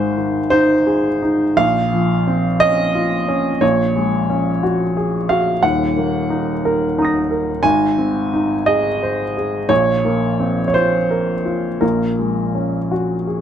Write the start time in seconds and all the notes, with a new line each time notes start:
Already playing: G#1 G#2 G#3 C5
0.17 D#3
0.50 D#4 C5
0.87 G#4
1.22 D#4
1.57 A#1 A#2 F5
1.93 F3
2.27 C4
2.60 C#4 D#5
2.95 F4
3.29 C#4
3.61 A#1 A#2 C#5
3.96 G#3
4.30 C#4
4.63 F#4
4.97 G#4
5.29 F#4 F5
5.63 D#1 D#2 F#5
5.97 A#3
6.30 D#4
6.65 A#4
6.98 D#4 A#5 D#6
7.05 A#6
7.31 A#4
7.63 G#1 G#2 G#5
7.98 C4
8.33 D#4
8.66 G#4 D#5
9.03 C5
9.37 G#4
9.69 A#1 A#2 C#5
10.05 A#3
10.40 C4
10.68 C#5
10.74 F4 C5
11.11 A#4
11.46 F4
11.81 A#1 A#2 A#4
12.19 G#3
12.55 C#4
12.91 F#4
13.27 G#4